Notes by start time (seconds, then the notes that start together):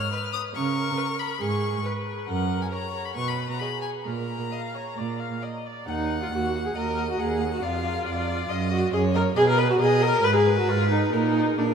Already playing: C#5 F6
0.12 B4
0.33 D#6
0.55 C#3 A#4 C#6
0.97 B4
1.19 B5
1.40 G#2 G#4 C#6
1.84 B4
2.28 F#2 A#4 F#5
2.62 G#5
2.71 A#4 C#5 A#5
3.05 B5
3.15 B2 B4 C#6
3.28 B5
3.50 A#5
3.60 G#4 D#5 B5
3.82 G#5
4.06 A#2 A#4 A#5
4.52 D#5 F5
4.75 C#5
4.97 A#2 D5
5.20 F5
5.42 D5 D#5
5.66 D5
5.87 D#2 D#4 F#5
6.10 F#5
6.22 F4
6.32 D#2 F#4 F#5
6.54 F#5
6.66 G#4
6.75 D#2 A#4 D#5 F#5
6.97 F#5
7.10 F#4
7.19 D#2 G#4 F#5
7.40 F#5
7.53 F#4
7.62 F2 F4 D5 F5
7.83 D5
8.06 F2 D5
8.27 D5
8.49 F#2 D#5
8.71 F#4 D#5
8.93 F#2 G#4 C#5 D#5
9.14 A#4 D#5
9.36 B2 G#4 B4 D#5
9.49 A#4
9.57 B4 D#5
9.70 F#4
9.79 B2 G#4 D#5
10.02 A#4 D#5
10.23 G#2 B4
10.35 G#4
10.46 B4
10.58 F#4
10.68 G#2 F4 B4
10.91 D#4 B4
11.13 A#2 D#4 A#4
11.35 A#4
11.57 A#2 D4 A#4